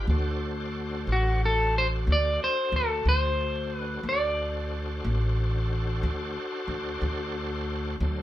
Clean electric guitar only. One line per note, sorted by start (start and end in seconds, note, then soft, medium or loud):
1.12 1.41 F#4 medium
1.46 1.74 A4 medium
1.78 1.87 C5 loud
2.12 2.43 D5 medium
2.44 2.73 C5 medium
2.76 3.05 A4 medium
3.09 3.76 C5 medium
3.76 4.08 B4 medium
4.09 5.74 D5 medium
5.74 6.67 C5 medium